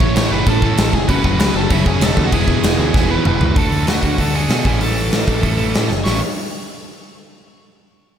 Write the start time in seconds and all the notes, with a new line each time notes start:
Already playing: A2 E3 A3 C#4 E4 C#5 C#6
0.00 A2 E3 A3, kick
0.15 A1 A2 E3 A3, snare, crash
0.30 F#1 A2 E3 A3 C#4 E4 B4 B5
0.46 A1 A2 E3 A3 A4 A5, kick, crash
0.62 A2 E3 A3, kick
0.77 A1 A2 E3 A3, snare, crash
0.93 F1 A2 E3 A3 G#4 G#5, kick
1.08 F#1 F#2 C#3 F#3 A3 C#4 F#4 B4 B5, kick, crash
1.24 F#1 F#2 C#3 F#3, kick
1.39 C#2 F#2 C#3 F#3 B4 B5, snare, crash
1.54 F#1 F#2 C#3 F#3 A4 A5
1.70 F#1 F#2 C#3 F#3 A3 C#4 E4 F#4 E5, kick, crash
1.86 F#1 F#2 C#3 F#3 G#4 G#5, kick
2.01 E1 F#2 C#3 F#3 A4 A5, snare, crash
2.16 D#2 F#2 C#3 F#3, kick
2.25 F#4 F#5
2.31 E1 E2 B2 E3 G#3 B3 E4 G#4 G#5, kick, crash
2.46 E2 B2 E3, kick
2.63 E1 E2 B2 E3, snare, crash
2.78 D2 E2 B2 E3
2.93 E1 E2 B2 E3 G#3 B3 E4, kick, snare
3.09 E2 B2 E3 B4 B5
3.25 E1 E2 B2 E3, mid tom
3.40 C#2 E2 B2 E3, floor tom
3.55 D2 D3 A3 D4 F#4 A4 A5, kick, open hi-hat
3.71 D2, open hi-hat
3.87 D2 F#4 F#5, snare, open hi-hat
4.03 D2, kick, open hi-hat
4.18 D2 D3 A3 D4 A4 A5, kick, open hi-hat
4.33 D3 A3 D4 F#4 G#4 A4 G#5, open hi-hat
4.48 B2 D3 A3 D4 F#4 A4, snare, open hi-hat
4.64 A1 A2 E3 A3 C#4 E4 G#4 A4 G#5, kick, open hi-hat
4.81 A1 A4 A5, open hi-hat
4.96 open hi-hat
5.12 A1, snare, open hi-hat
5.26 A1 A2 E3 A3, kick, open hi-hat
5.42 A1 A2 E3 A3 C#4 E4 A4, kick, open hi-hat
5.57 A1 A2 E3 A3 C#4 E4 A4, open hi-hat
5.74 A2, snare, open hi-hat
5.91 F#1, snare
6.04 A1 A2 E3 A3 C#4 E4 C#6, snare, open hi-hat